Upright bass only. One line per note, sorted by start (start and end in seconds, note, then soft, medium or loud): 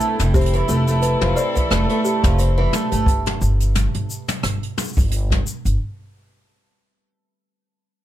0.20 0.61 F1 medium
0.69 1.13 F1 medium
1.22 1.32 F1 medium
1.71 1.84 F1 medium
2.24 2.66 F1 loud
2.92 3.34 G1 medium
3.41 3.85 G1 loud
3.95 4.05 G1 medium
4.43 4.57 G1 medium
4.97 5.39 G1 loud
5.65 5.76 G1 medium